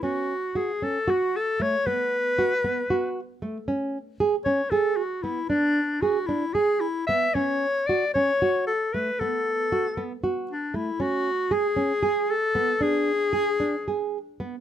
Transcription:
X:1
M:7/8
L:1/8
Q:1/4=115
K:Bdor
V:1 name="Clarinet"
F2 G A F A c | B6 z | z3 c A F E | D2 F E G E e |
c2 d c2 A B | A4 z D E | F2 G3 A2 | G4- G z2 |]
V:2 name="Nylon-string guitar"
C2 F C F2 A, | B,2 F B, F2 A, | C2 G C G2 B, | D2 G D G2 B, |
C2 F C F2 A, | B,2 F B, F2 A, | C2 G C G2 B, | D2 G D G2 B, |]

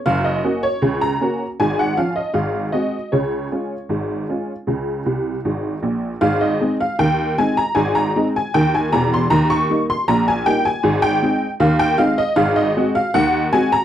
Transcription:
X:1
M:2/4
L:1/16
Q:1/4=78
K:Db
V:1 name="Honky-tonk piano"
f e2 d2 b3 | a g f e f2 e2 | d8- | d6 z2 |
[K:Ab] f e2 f g2 a b | a b2 a g a b c' | b d'2 c' b a g a- | a g3 f g f e |
f e2 f _g2 a b |]
V:2 name="Honky-tonk piano" clef=bass
[G,,,G,,]2 [B,DG]2 [D,,D,]2 [B,DG]2 | [A,,,A,,]2 [F,DF]2 [A,,,A,,]2 [A,CG]2 | [D,,D,]2 [A,DF]2 [A,,,A,,]2 [A,DF]2 | [D,,D,]2 [C,,C,]2 [A,,,A,,]2 [B,,,B,,]2 |
[K:Ab] [A,,,A,,]2 [A,CE]2 [E,,E,]2 [A,CE]2 | [A,,,A,,]2 [A,CE]2 [E,,E,]2 [_F,,,_F,,]2 | [E,,E,]2 [G,B,E]2 [B,,,B,,]2 [G,B,E]2 | [A,,,A,,]2 [A,CE]2 [E,,E,]2 [A,CE]2 |
[A,,,A,,]2 [A,C_G]2 [E,,E,]2 [A,CG]2 |]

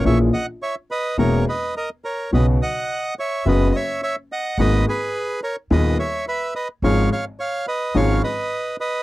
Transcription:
X:1
M:4/4
L:1/8
Q:1/4=106
K:B
V:1 name="Bandoneon"
[ce] [df] [ce] [Bd] [Ac] [Bd] [Ad] [Ac] | [Bd] [df]2 [ce] [Bd] [ce] [ce] [df] | [Bd] [GB]2 [Ac] [Bd] [ce] [Be] [Bd] | [c^e] [ce] [ce] [Bd] [ce] [Bd]2 [Bd] |]
V:2 name="Grand piano" clef=bass
[A,,,A,,E,A,CG] z3 [E,,,E,,E,A,CG] z3 | [B,,,B,,C,F,B,F] z3 [F,,,F,,C,F,B,F] z3 | [G,,,G,,D,A,B,G] z3 [D,,,D,,D,A,B,G] z3 | [G,,,G,,^E,G,CG] z3 [G,,,G,,E,G,CG] z3 |]
V:3 name="Upright bass" clef=bass
A,,, z3 E,,, z3 | B,,, z3 F,,, z3 | G,,, z3 D,, z3 | G,,, z3 G,,, z3 |]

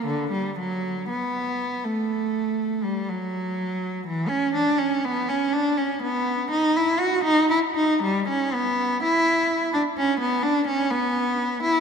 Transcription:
X:1
M:4/4
L:1/16
Q:1/4=61
K:Bm
V:1 name="Cello"
D, G, F,2 B,3 A,4 G, F,4 | E, C D C B, C D C B,2 ^D E F D E D | G, C B,2 E3 D C B, D C B,3 E |]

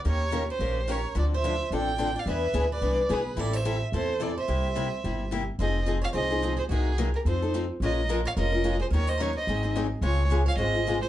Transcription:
X:1
M:4/4
L:1/8
Q:"Swing" 1/4=216
K:C
V:1 name="Violin"
^c3 ^B3 c2 | d e3 g3 f | e3 d3 B2 | d e2 z c2 d e- |
e6 z2 | [K:Fm] e2 z f e3 c | A2 z B c2 z2 | e2 z f e3 c |
d e d e3 z2 | d2 z f e3 c |]
V:2 name="Steel-string acoustic guitar"
^A3 G3 A2 | A c3 d3 d | B3 B3 ^G2 | A c2 z A2 A c- |
c6 z2 | [K:Fm] c2 z d c3 A | _G2 z =G =A2 z2 | B2 z d B3 A |
B c B c3 z2 | A2 z d c3 A |]
V:3 name="Steel-string acoustic guitar"
[^D,^A,^CG^A] z [D,A,CGA] z [D,A,CGA] z [D,A,CGA] z | [D,F,CDA] z [D,F,CDA] z [D,F,CDA] z [D,F,CDA] z | [E,B,D^G] z [E,B,DG] z [E,B,DG] z [E,B,DG] z | [E,G,CEA] z [E,G,CEA] z [E,G,CEA] z [E,G,CEA] z |
[C,G,_B,EG] z [C,G,B,EG] z [C,G,B,EG] z [C,G,B,EG] z | [K:Fm] [F,CEA] z [F,CEA] z [F,CEA] [CEA] [F,CEA] z | [C,_G,B,EB] z [C,G,B,EB] z [F,CE=A] [CEA] [F,CEA] z | [F,A,DFB] z [F,A,DFB] z [F,A,DFB] [DFB] [F,A,DFB] z |
[E,_G,DEB] z [E,G,DEB] z [E,G,CEA] [CEA] [E,G,CEA] z | [D,A,CFA] z [D,A,CFA] z [D,A,CFA] [CFA] [D,A,CFA] z |]
V:4 name="Upright bass" clef=bass
^D,,4 ^A,,,4 | D,,4 A,,,4 | E,,2 D,,2 C,,2 B,,,2 | A,,,4 E,,4 |
C,,4 G,,,4 | [K:Fm] F,,,4 C,,4 | C,,4 F,,4 | B,,,4 F,,,4 |
E,,4 A,,,4 | D,,4 A,,,4 |]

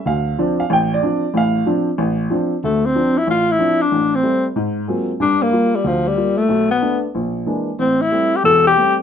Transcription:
X:1
M:4/4
L:1/8
Q:"Swing" 1/4=186
K:Dm
V:1 name="Tenor saxophone"
z8 | z8 | A, C2 E F E2 D- | D C2 z4 z |
D B,2 G, F, G,2 A,- | A, =B,2 z4 z | C E2 G A G2 z |]
V:2 name="Grand piano"
f2 z f g d3 | f2 z6 | z8 | z8 |
z8 | z8 | z8 |]
V:3 name="Grand piano" clef=bass
D,,2 [F,CD] z A,,,2 [F,CD] z | [A,,,A,,]2 [F,CD] z A,,,2 [F,CD] z | D,,2 [F,CD] z A,,,2 [F,CD] z | A,,,2 [G,A,C] z ^G,,2 [^F,^G,^A,^B,^E] z |
[G,,G,]2 [G,B,F] z D,,2 [G,B,F] z | =B,,,2 [A,=B,D] z _B,,,2 [E,_A,_B,D] z | A,,,2 [G,A,C] z [E,,,E,,]2 [G,A,C] z |]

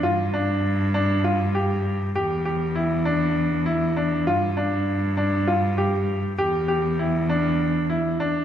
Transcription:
X:1
M:7/8
L:1/8
Q:1/4=99
K:Ephr
V:1 name="Grand piano"
F D2 D F G2 | G G E D2 E D | F D2 D F G2 | G G E D2 E D |]
V:2 name="Cello" clef=bass
G,,6- G,, | E,,6- E,, | G,,6- G,, | E,,6- E,, |]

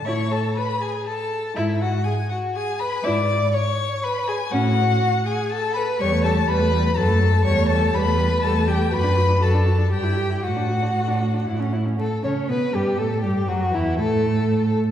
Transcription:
X:1
M:3/4
L:1/16
Q:1/4=121
K:A
V:1 name="Violin"
c'2 a2 b2 g2 a4 | e2 f2 g2 f2 g2 b2 | d'4 c'4 b2 g2 | f6 g2 a2 b2 |
[K:Amix] c'2 a2 b4 a4 | c'2 a2 b4 a2 g2 | b4 a4 g4 | f8- f2 z2 |
A2 c2 B2 G2 A2 G2 | F2 E2 A6 z2 |]
V:2 name="Violin"
c2 A2 B2 G2 A4 | E2 F2 G2 F2 G2 B2 | d4 c4 B2 G2 | F6 G2 A2 B2 |
[K:Amix] c2 A2 B4 A4 | c2 A2 B4 A2 G2 | B4 A4 G4 | F8- F2 z2 |
A2 c2 B2 G2 A2 G2 | F2 E2 A6 z2 |]
V:3 name="Viola"
E2 z8 z2 | E2 z8 z2 | E2 z8 z2 | C2 z8 z2 |
[K:Amix] G, A, G, A, G, A, G, A, F, A, F, A, | G, A, G, A, G, A, G, A, G, A, G, A, | F D F D F D F D G E G E | F D F D F D F D E C E C |
A,2 C2 B,2 G,2 A,2 G,2 | F,2 E,2 A,6 z2 |]
V:4 name="Cello" clef=bass
A,,4 z8 | G,,4 z8 | G,,4 z8 | A,,4 z8 |
[K:Amix] E,,4 E,,4 F,,4 | E,,4 E,,4 E,,4 | F,,4 F,,4 G,,4 | A,,4 A,,4 A,,4 |
A,,2 C,2 B,,2 G,,2 A,,2 G,,2 | F,,2 E,,2 A,,6 z2 |]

